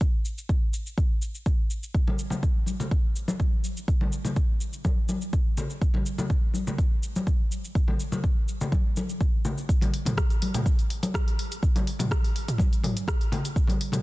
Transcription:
0.01 kick loud
0.01 cabasa soft
0.25 cabasa medium
0.38 cabasa soft
0.49 kick loud
0.49 cabasa soft
0.74 cabasa medium
0.86 cabasa soft
0.98 kick loud
0.98 cabasa soft
1.22 cabasa medium
1.35 cabasa soft
1.46 kick loud
1.46 cabasa soft
1.70 cabasa medium
1.83 cabasa soft
1.94 kick loud
1.94 cabasa soft
2.08 high conga medium
2.08 low conga medium
2.19 cabasa medium
2.30 high conga medium
2.30 low conga medium
2.30 cabasa soft
2.43 kick medium
2.43 cabasa soft
2.66 high conga medium
2.66 cabasa medium
2.80 low conga medium
2.80 cabasa soft
2.91 kick loud
2.91 cabasa soft
3.16 cabasa medium
3.28 high conga loud
3.28 cabasa soft
3.40 kick medium
3.40 cabasa soft
3.64 cabasa medium
3.77 cabasa soft
3.88 kick loud
3.88 cabasa soft
4.01 high conga medium
4.01 low conga medium
4.12 cabasa medium
4.25 high conga medium
4.25 low conga medium
4.25 cabasa soft
4.36 kick medium
4.36 cabasa soft
4.61 cabasa medium
4.73 cabasa soft
4.85 kick loud
4.85 high conga medium
4.85 cabasa soft
5.09 high conga medium
5.09 cabasa medium
5.22 cabasa soft
5.33 kick medium
5.33 cabasa soft
5.57 low conga medium
5.57 cabasa medium
5.70 cabasa soft
5.82 kick loud
5.82 cabasa soft
5.94 high conga medium
5.94 low conga medium
6.06 cabasa medium
6.18 high conga medium
6.18 low conga medium
6.18 cabasa soft
6.30 kick medium
6.30 cabasa soft
6.54 high conga soft
6.54 cabasa medium
6.67 low conga medium
6.67 cabasa soft
6.78 kick loud
6.78 cabasa soft
7.03 cabasa medium
7.16 high conga medium
7.16 cabasa soft
7.27 kick medium
7.27 cabasa soft
7.52 cabasa medium
7.65 cabasa soft
7.75 kick loud
7.75 cabasa soft
7.88 high conga medium
7.88 low conga medium
8.00 cabasa medium
8.12 high conga medium
8.12 low conga medium
8.12 cabasa soft
8.24 kick medium
8.24 cabasa soft
8.48 cabasa medium
8.61 low conga medium
8.61 cabasa soft
8.72 kick loud
8.72 high conga medium
8.72 cabasa soft
8.97 high conga medium
8.97 cabasa medium
9.09 cabasa soft
9.21 kick loud
9.21 cabasa soft
9.45 low conga medium
9.45 cabasa medium
9.58 cabasa soft
9.69 kick loud
9.69 cabasa medium
9.81 closed hi-hat soft
9.81 high conga medium
9.81 low conga medium
9.81 cabasa soft
9.94 open hi-hat medium
10.05 closed hi-hat medium
10.05 mid tom medium
10.05 high conga medium
10.05 low conga medium
10.05 cabasa medium
10.17 kick loud
10.17 cross-stick loud
10.17 cabasa medium
10.30 closed hi-hat soft
10.30 cabasa soft
10.42 open hi-hat medium
10.42 high conga medium
10.54 closed hi-hat medium
10.54 mid tom medium
10.54 low conga medium
10.54 cabasa medium
10.66 kick loud
10.66 cabasa medium
10.79 closed hi-hat soft
10.79 cabasa soft
10.90 open hi-hat medium
11.03 closed hi-hat medium
11.03 high conga loud
11.03 cabasa medium
11.14 kick loud
11.14 cross-stick loud
11.14 cabasa medium
11.28 closed hi-hat soft
11.28 cabasa soft
11.39 open hi-hat medium
11.52 closed hi-hat medium
11.52 cabasa medium
11.63 kick loud
11.63 cabasa medium
11.76 closed hi-hat soft
11.76 high conga medium
11.76 low conga medium
11.76 cabasa soft
11.87 open hi-hat medium
11.99 closed hi-hat medium
11.99 mid tom medium
11.99 high conga medium
11.99 low conga loud
11.99 cabasa medium
12.11 kick loud
12.11 cross-stick loud
12.11 cabasa medium
12.24 open hi-hat medium
12.24 cabasa soft
12.36 open hi-hat medium
12.48 closed hi-hat medium
12.48 mid tom medium
12.48 cabasa medium
12.58 kick loud
12.58 high conga medium
12.58 cabasa medium
12.73 closed hi-hat soft
12.73 cabasa soft
12.83 mid tom medium
12.83 open hi-hat medium
12.83 high conga loud
12.97 closed hi-hat medium
12.97 cabasa medium
13.08 kick loud
13.08 cross-stick loud
13.08 cabasa medium
13.21 closed hi-hat soft
13.21 cabasa soft
13.32 open hi-hat medium
13.32 low conga loud
13.45 closed hi-hat medium
13.45 cabasa medium
13.56 kick loud
13.56 cabasa medium
13.67 closed hi-hat soft
13.67 high conga loud
13.67 low conga medium
13.67 cabasa soft
13.81 open hi-hat medium
13.92 closed hi-hat medium
13.92 mid tom medium
13.92 high conga medium
13.92 low conga medium
13.92 cabasa medium

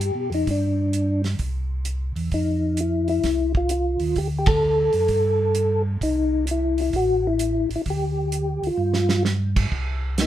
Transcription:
0.00 0.11 G2 medium
0.00 0.30 G4 medium
0.00 closed hi-hat soft
0.15 0.30 B2 medium
0.30 0.45 F2 medium
0.30 open hi-hat soft
0.34 0.49 D#4 medium
0.47 1.36 G2 medium
0.47 1.22 D4 medium
0.47 kick soft
0.47 open hi-hat soft
0.93 closed hi-hat soft
1.24 snare soft
1.24 open hi-hat soft
1.39 2.12 C2 medium
1.39 kick soft
1.39 open hi-hat soft
1.85 closed hi-hat soft
2.16 2.30 E2 medium
2.16 open hi-hat soft
2.31 3.20 F2 medium
2.31 2.80 D#4 medium
2.31 kick soft
2.31 open hi-hat soft
2.77 3.08 E4 medium
2.77 closed hi-hat medium
3.08 3.52 E4 medium
3.08 open hi-hat soft
3.24 3.97 C2 medium
3.24 kick soft
3.24 snare soft
3.24 open hi-hat soft
3.55 3.70 F4 medium
3.55 kick soft
3.69 4.18 F4 medium
3.69 closed hi-hat medium
4.00 4.15 D#2 medium
4.00 open hi-hat soft
4.16 4.90 D2 medium
4.16 4.27 G4 medium
4.16 kick soft
4.16 open hi-hat soft
4.39 4.48 G4 medium
4.46 5.82 A4 medium
4.46 kick medium
4.46 ride medium
4.93 5.08 F#2 medium
4.93 open hi-hat soft
5.08 5.97 G2 medium
5.08 kick soft
5.08 open hi-hat soft
5.55 closed hi-hat medium
6.01 6.90 C2 medium
6.01 6.45 D#4 medium
6.01 kick soft
6.01 open hi-hat soft
6.47 closed hi-hat soft
6.51 6.80 E4 medium
6.78 6.96 E4 medium
6.78 open hi-hat soft
6.93 7.67 A1 medium
6.93 7.27 F#4 medium
6.93 kick soft
6.93 open hi-hat soft
7.27 7.69 E4 medium
7.39 closed hi-hat medium
7.70 7.78 A1 soft
7.70 open hi-hat soft
7.76 7.82 E4 medium
7.86 8.59 D2 medium
7.86 kick soft
7.86 open hi-hat soft
7.90 8.68 G4 medium
8.32 closed hi-hat soft
8.62 8.70 D2 soft
8.62 open hi-hat soft
8.67 9.23 F4 medium
8.78 9.67 G2 medium
8.94 snare medium
9.09 snare medium
9.25 snare medium
9.56 kick medium
9.56 crash medium
9.72 10.27 C2 medium
9.72 kick soft
10.18 10.27 D#4 medium
10.18 snare medium
10.18 closed hi-hat medium
10.22 10.27 A#3 medium

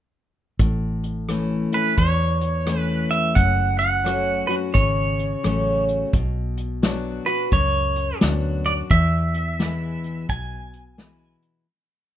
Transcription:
0.59 1.65 A1 medium
0.59 1.93 A2 medium
0.59 kick loud
0.59 closed hi-hat medium
1.04 closed hi-hat medium
1.28 1.71 E3 medium
1.28 1.71 A3 medium
1.28 1.71 C#4 medium
1.28 1.71 E4 medium
1.28 cross-stick medium
1.28 closed hi-hat medium
1.72 1.98 C#4 soft
1.72 1.97 E4 medium
1.72 1.98 B4 medium
1.72 closed hi-hat medium
1.98 3.31 E2 medium
1.98 3.04 E2 medium
1.98 2.79 C#5 medium
1.98 kick medium
1.98 closed hi-hat medium
2.41 closed hi-hat medium
2.66 3.33 E3 soft
2.66 3.34 A3 medium
2.66 3.34 C#4 medium
2.66 3.35 E4 medium
2.66 cross-stick loud
2.66 closed hi-hat medium
2.79 3.15 B4 medium
3.11 3.35 E5 medium
3.11 closed hi-hat medium
3.35 4.42 F#1 medium
3.35 4.70 F#2 medium
3.35 3.78 F#5 loud
3.35 kick loud
3.35 closed hi-hat medium
3.79 4.51 F#5 medium
3.79 closed hi-hat medium
4.04 4.47 F#3 medium
4.04 4.48 A3 medium
4.04 4.48 C#4 medium
4.04 4.47 F#4 medium
4.04 cross-stick medium
4.04 closed hi-hat medium
4.47 4.75 C#4 soft
4.47 4.74 F#4 medium
4.47 4.54 B4 medium
4.47 closed hi-hat medium
4.74 5.34 G#1 medium
4.74 6.08 C#3 medium
4.74 5.84 C#5 medium
4.74 kick medium
4.74 closed hi-hat medium
5.19 closed hi-hat medium
5.43 6.04 A1 medium
5.43 6.11 F#3 medium
5.43 6.11 A3 medium
5.43 6.11 C#4 medium
5.43 6.12 F#4 medium
5.43 cross-stick loud
5.43 closed hi-hat medium
5.89 closed hi-hat medium
6.13 7.19 B1 medium
6.13 7.47 B2 medium
6.13 kick loud
6.13 closed hi-hat medium
6.58 closed hi-hat medium
6.82 7.25 F#3 medium
6.82 7.25 B3 medium
6.82 7.26 D4 medium
6.82 7.25 F#4 medium
6.82 snare loud
6.82 closed hi-hat medium
7.26 7.52 D4 soft
7.26 7.51 F#4 medium
7.26 7.53 B4 medium
7.26 closed hi-hat medium
7.52 8.11 C#2 medium
7.52 8.86 F#2 medium
7.52 8.18 C#5 medium
7.52 kick medium
7.52 closed hi-hat medium
7.96 closed hi-hat medium
8.21 8.81 D2 medium
8.21 8.63 F#3 soft
8.21 8.64 B3 medium
8.21 8.64 D4 medium
8.21 8.64 F#4 medium
8.21 snare loud
8.21 closed hi-hat medium
8.65 8.91 D4 soft
8.65 8.90 F#4 medium
8.65 8.73 D5 medium
8.65 closed hi-hat medium
8.91 9.96 E2 medium
8.91 10.24 E2 medium
8.91 10.25 E5 medium
8.91 kick loud
8.91 closed hi-hat medium
9.34 closed hi-hat medium
9.59 10.26 E3 medium
9.59 10.27 G#3 medium
9.59 10.27 B3 medium
9.59 10.27 E4 medium
9.59 snare medium
9.59 closed hi-hat medium
10.04 closed hi-hat medium
10.29 11.35 B1 medium
10.29 11.62 B2 medium
10.29 11.38 G#5 medium
10.29 kick medium
10.29 closed hi-hat medium
10.74 closed hi-hat medium
10.98 11.65 E3 medium
10.98 11.65 G#3 medium
10.98 11.65 B3 medium
10.98 11.66 E4 medium
10.98 snare loud
10.98 closed hi-hat medium
11.43 closed hi-hat soft

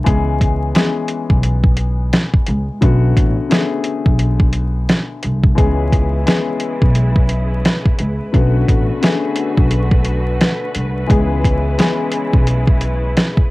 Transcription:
0.04 0.71 C#2 loud
0.04 0.54 E3 medium
0.04 0.55 G#3 medium
0.04 0.55 B3 medium
0.04 0.55 C#4 medium
0.04 0.55 G#4 medium
0.04 kick loud
0.04 closed hi-hat medium
0.41 kick medium
0.41 closed hi-hat medium
0.74 1.71 E3 medium
0.74 1.71 G#3 medium
0.74 1.71 B3 medium
0.74 1.72 C#4 medium
0.74 1.72 G#4 medium
0.74 snare loud
0.74 closed hi-hat loud
1.08 closed hi-hat medium
1.30 2.09 B1 medium
1.30 kick loud
1.43 closed hi-hat medium
1.64 kick medium
1.77 closed hi-hat medium
2.13 snare loud
2.13 closed hi-hat medium
2.34 kick medium
2.47 2.66 C#2 loud
2.47 closed hi-hat medium
2.81 3.14 B1 loud
2.81 3.31 D3 medium
2.81 3.31 A3 medium
2.81 3.31 B3 medium
2.81 3.32 C#4 medium
2.81 3.32 F#4 medium
2.81 kick loud
2.81 closed hi-hat medium
3.17 3.35 A1 loud
3.17 kick medium
3.17 closed hi-hat medium
3.49 4.46 D3 medium
3.49 4.46 A3 medium
3.49 4.47 B3 medium
3.49 4.47 C#4 medium
3.49 4.47 G#4 medium
3.49 snare loud
3.49 closed hi-hat loud
3.84 closed hi-hat medium
4.06 4.85 B1 medium
4.06 kick loud
4.19 closed hi-hat medium
4.40 kick medium
4.53 closed hi-hat medium
4.89 snare loud
4.89 closed hi-hat medium
5.23 5.55 C2 medium
5.23 closed hi-hat medium
5.43 kick loud
5.55 6.23 C#2 loud
5.55 8.32 C#3 medium
5.55 6.06 E3 medium
5.55 6.06 G#3 medium
5.55 8.32 G#3 medium
5.55 6.06 B3 medium
5.55 6.07 C#4 medium
5.55 8.32 E4 medium
5.55 6.07 G#4 medium
5.55 13.51 B4 medium
5.55 kick loud
5.55 closed hi-hat medium
5.93 kick medium
5.93 closed hi-hat medium
6.26 7.22 E3 medium
6.26 7.23 G#3 medium
6.26 7.23 B3 medium
6.26 7.23 C#4 medium
6.26 7.24 G#4 medium
6.26 snare loud
6.26 closed hi-hat medium
6.60 closed hi-hat medium
6.82 7.61 B1 medium
6.82 kick loud
6.95 closed hi-hat medium
7.16 kick medium
7.29 closed hi-hat medium
7.65 snare loud
7.65 closed hi-hat medium
7.85 kick medium
7.99 8.18 C#2 medium
7.99 closed hi-hat medium
8.33 8.65 B1 loud
8.33 8.82 D3 medium
8.33 11.06 D3 medium
8.33 11.06 A3 medium
8.33 8.83 A3 medium
8.33 8.83 B3 medium
8.33 8.84 C#4 medium
8.33 11.06 F#4 medium
8.33 8.84 F#4 medium
8.33 kick loud
8.33 closed hi-hat medium
8.68 8.87 A1 loud
8.68 kick medium
8.68 closed hi-hat medium
9.01 9.98 D3 medium
9.01 9.98 A3 medium
9.01 9.99 B3 medium
9.01 9.99 C#4 medium
9.01 9.99 G#4 medium
9.01 snare loud
9.01 closed hi-hat medium
9.36 closed hi-hat medium
9.58 10.37 B1 medium
9.58 kick loud
9.71 closed hi-hat medium
9.92 kick medium
10.05 closed hi-hat medium
10.41 snare loud
10.41 closed hi-hat medium
10.75 11.07 C2 medium
10.75 closed hi-hat medium
11.07 11.75 C#2 loud
11.07 13.51 C#3 medium
11.07 11.58 E3 medium
11.07 11.58 G#3 medium
11.07 13.51 G#3 medium
11.07 11.58 B3 medium
11.07 11.59 C#4 medium
11.07 13.51 E4 medium
11.07 11.59 G#4 medium
11.07 kick loud
11.07 closed hi-hat medium
11.44 kick medium
11.44 closed hi-hat medium
11.78 12.74 E3 medium
11.78 12.74 G#3 medium
11.78 12.75 B3 medium
11.78 12.75 C#4 medium
11.78 12.76 G#4 medium
11.78 snare loud
11.78 closed hi-hat loud
12.12 closed hi-hat medium
12.33 13.13 B1 medium
12.33 kick loud
12.47 closed hi-hat medium
12.67 kick medium
12.81 closed hi-hat medium
13.17 snare loud
13.17 closed hi-hat medium
13.37 kick medium

